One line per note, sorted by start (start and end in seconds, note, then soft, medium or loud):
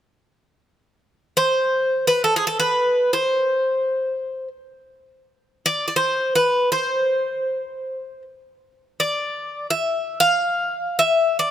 1.37 2.07 C5 medium
2.07 2.24 B4 medium
2.24 2.36 A4 medium
2.36 2.46 G#4 medium
2.47 2.59 A4 medium
2.60 3.13 B4 medium
3.13 4.47 C5 medium
5.66 5.86 D5 medium
5.88 5.95 D5 medium
5.96 6.35 C5 medium
6.35 6.71 B4 medium
6.72 8.22 C5 medium
9.00 9.66 D5 medium
9.70 10.20 E5 medium
10.20 10.98 F5 medium
10.99 11.39 E5 medium
11.39 11.51 D5 medium